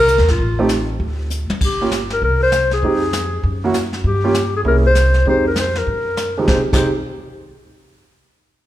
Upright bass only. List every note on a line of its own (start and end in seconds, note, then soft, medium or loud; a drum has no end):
0.00 0.16 C2 medium
0.19 0.28 D#2 medium
0.29 0.38 A#1 medium
0.38 0.97 A1 medium
1.00 1.46 D2 medium
1.50 muted upright bass stroke soft
1.61 2.19 G1 medium
2.22 2.80 C2 medium
2.83 3.41 F2 medium
3.43 4.01 F#2 medium
4.04 4.62 G2 medium
4.65 5.23 C2 medium
5.25 5.84 F2 medium
5.87 6.45 F#2 medium
6.48 6.59 F1 medium
6.73 6.87 F1 medium